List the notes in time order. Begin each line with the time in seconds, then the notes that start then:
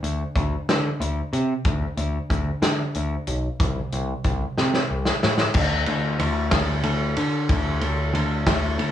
0.03 D2, closed hi-hat
0.36 D2, kick, closed hi-hat
0.69 D3, snare, closed hi-hat
1.00 D2, closed hi-hat
1.33 C3, closed hi-hat
1.65 D2, kick, closed hi-hat
1.97 D2, closed hi-hat
2.30 D2, kick, closed hi-hat
2.62 D3, snare, closed hi-hat
2.95 D2, closed hi-hat
3.27 B1, closed hi-hat
3.60 C2, kick, closed hi-hat
3.92 C2, closed hi-hat
4.24 C2, kick, closed hi-hat
4.57 C3, snare
4.74 snare
4.91 C2
5.05 snare
5.23 A2, snare
5.38 snare
5.54 D2, kick, crash
5.86 D2, ride
6.19 D2, ride
6.51 D2, kick, snare, ride
6.83 D2, ride
7.16 D3, ride
7.49 D2, kick, ride
7.81 D2, ride
8.14 D2, ride
8.47 D2, kick, snare, ride
8.79 D2, ride